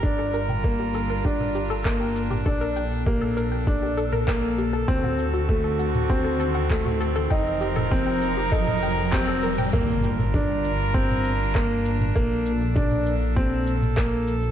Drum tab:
SH |xxxxxxxxxxxxxxxx|xxxxxxxxxxxxxxxx|xxxxxxxxxxxxxxxx|xxxxxxxxxxxxxxxx|
CP |------------x---|------------x---|------------x---|------------x---|
T2 |---o-----o-----o|-----o-----o----|-o-----o-----o--|---o-----o-----o|
BD |o---o---o---o---|o---o---o---o---|o---o---o---o---|o---o---o---o---|

SH |xxxxxxxxxxxxxxxx|xxxxxxxxxxxxxxxx|
CP |------------x---|------------x---|
T2 |---o-----o-----o|-----o-----o----|
BD |o---o---o---o---|o---o---o---o---|